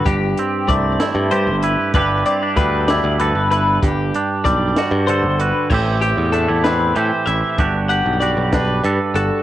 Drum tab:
CC |------|------|------|x-----|
HH |xxxxxx|xxxxxx|xxxxxx|-xxxxx|
SD |---o--|---o--|---o--|---o--|
BD |o-o---|o-o---|o-o---|o-----|

CC |------|
HH |xxxxxx|
SD |---o--|
BD |o--o--|